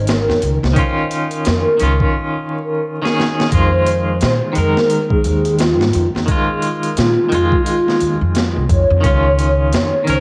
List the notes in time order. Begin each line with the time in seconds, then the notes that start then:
Already playing: G#1 D#3 C#4 A#4
0.07 A#4, snare, closed hi-hat
0.28 F2, snare
0.42 C#2, closed hi-hat
0.63 C#2, snare
0.73 D#3 C#4, kick, closed hi-hat
0.79 F4
1.11 closed hi-hat
1.31 closed hi-hat
1.45 F2 A#4, snare, closed hi-hat
1.77 D#3 C#4, closed hi-hat
1.81 C#2 F4
2.00 kick
3.02 D#3 C#4 G#4, snare
3.20 snare
3.40 snare
3.49 F2 D#3 G#3, kick, closed hi-hat
3.55 F4 C5
3.86 closed hi-hat
4.21 A#2 C5, snare, closed hi-hat
4.53 D#3 G#3, closed hi-hat
4.57 F2 A#4
4.77 snare
4.90 closed hi-hat
5.10 G#4, kick
5.24 D#2, closed hi-hat
5.45 closed hi-hat
5.59 F4, snare, closed hi-hat
5.81 G#2, snare
5.93 F2, closed hi-hat
6.15 F2, snare
6.26 D#3 G#3, kick, closed hi-hat
6.31 F4
6.62 closed hi-hat
6.83 closed hi-hat
6.97 A#2 F4, snare, closed hi-hat
7.29 F2 D#3 G#3, closed hi-hat
7.34 F4
7.52 kick
7.66 F4, closed hi-hat
7.88 snare
8.01 D#2, closed hi-hat
8.21 F2
8.35 snare, closed hi-hat
8.56 C2
8.69 F2 C#5, kick, closed hi-hat
8.90 F2
9.01 C#2 D#3 C#4, kick, closed hi-hat
9.06 F4 C#5
9.39 closed hi-hat
9.73 F2 C#5, snare, closed hi-hat
10.04 C#2 D#3 C#4, closed hi-hat
10.10 A#4 C5